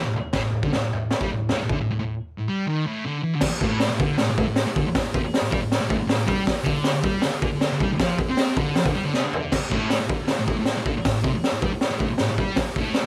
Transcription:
0.05 A2
0.13 muted distorted electric guitar stroke, floor tom
0.33 A2, kick, snare, floor tom
0.44 A2
0.53 floor tom
0.63 D3, kick
0.73 A2, snare, floor tom
0.93 A2, floor tom
1.11 snare, floor tom
1.21 G3, kick
1.30 A2, floor tom
1.49 A2, snare, floor tom
1.63 A2
1.69 D3, kick, floor tom
1.81 A2
1.91 A2
1.99 A2
2.38 A2
2.48 G3
2.67 D#3
2.86 A2
3.05 D3
3.23 E3
3.35 D3
3.41 kick, snare, crash
3.61 A2, kick
3.80 snare, open hi-hat
3.91 A2
4.00 D3, kick
4.18 A2, snare, open hi-hat
4.29 A2
4.38 A2, kick
4.48 A2
4.56 snare, open hi-hat
4.67 A2
4.76 D3, kick
4.86 muted distorted electric guitar stroke
4.95 A2, kick, snare, open hi-hat
5.14 C3, kick
5.23 muted distorted electric guitar stroke
5.34 snare, open hi-hat
5.42 A2
5.51 G3, kick
5.61 A2
5.72 snare, open hi-hat
5.80 A2
5.89 A2, kick
5.98 muted distorted electric guitar stroke
6.07 A2, snare, open hi-hat
6.15 A2
6.26 G3, kick
6.47 kick, snare, open hi-hat
6.64 D3, kick
6.84 snare, open hi-hat
6.94 D3
7.04 G3, kick
7.22 D3, snare, open hi-hat
7.32 D3
7.42 D3, kick
7.52 D3
7.61 snare, open hi-hat
7.72 D3
7.80 G3, kick
7.92 muted distorted electric guitar stroke
8.00 F3, kick, snare, open hi-hat
8.19 D3, kick
8.29 C4
8.37 snare, open hi-hat
8.57 D3, kick
8.76 F3, snare, open hi-hat
8.86 D3, kick
8.95 G3
9.04 D3
9.14 C3, snare
9.25 D3
9.33 floor tom
9.52 kick, snare, crash
9.71 A2, kick
9.90 snare, open hi-hat
10.00 A2
10.09 D3, kick
10.27 A2, snare, open hi-hat
10.39 A2
10.47 A2, kick
10.59 A2
10.65 snare, open hi-hat
10.77 A2
10.86 D3, kick
10.97 muted distorted electric guitar stroke
11.05 A2, kick, snare, open hi-hat
11.24 C3, kick
11.34 muted distorted electric guitar stroke
11.44 snare, open hi-hat
11.53 A2
11.62 G3, kick
11.72 A2
11.81 snare, open hi-hat
11.91 A2
11.99 A2, kick
12.10 muted distorted electric guitar stroke
12.18 A2, snare, open hi-hat
12.29 A2
12.38 G3, kick
12.56 kick, snare, open hi-hat
12.76 A2, kick
12.94 snare, open hi-hat

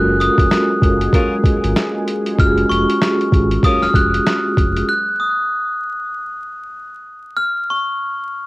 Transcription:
Already playing: F#1 F#3 G#3 A#3 C#4 F4 F#4 G#4 F#6
0.00 A#4
0.20 D#6, closed hi-hat
0.38 F1, kick, closed hi-hat
0.51 snare, closed hi-hat
0.82 F#1, kick, closed hi-hat
1.01 closed hi-hat
1.13 C#4 F4 A#4, kick, closed hi-hat
1.44 kick, closed hi-hat
1.64 G#1, closed hi-hat
1.76 snare, closed hi-hat
2.08 closed hi-hat
2.26 closed hi-hat
2.35 F#1 G#3 C#4 F4, kick
2.39 F#4 G4 F6, closed hi-hat
2.49 G#4
2.58 closed hi-hat
2.69 F1 C#6, closed hi-hat
2.90 closed hi-hat
3.02 snare, closed hi-hat
3.21 closed hi-hat
3.32 G#1, kick, closed hi-hat
3.51 closed hi-hat
3.63 C#4 F4 A#4 D#6, kick, closed hi-hat
3.82 F1 F6, snare, closed hi-hat
3.94 F1 F#6, kick, closed hi-hat
4.14 closed hi-hat
4.26 snare, closed hi-hat
4.57 F1, kick, closed hi-hat
4.76 closed hi-hat
4.89 F#6
5.20 D#6
7.37 F6
7.70 C#6

